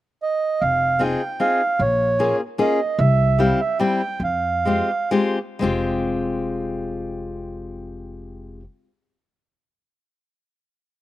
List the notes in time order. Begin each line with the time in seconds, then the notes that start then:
0.22 D#5
0.61 F1 F5
0.99 C4 D#4 F4 G#4 G5
1.40 C4 D#4 F4 G#4 F5
1.79 A#1 C#5
2.19 A#3 C#4 F4 G#4
2.58 A#3 C#4 F4 G#4 D#5
2.99 C2 E5
3.39 G3 C4 E4 G4 F5
3.61 E5
3.79 G3 C4 E4 G4 G5
4.20 F2 F5
4.65 G#3 C4 F4 G4
5.11 G#3 C4 F4 G4
5.59 F1 G#3 C4 F4
5.64 G4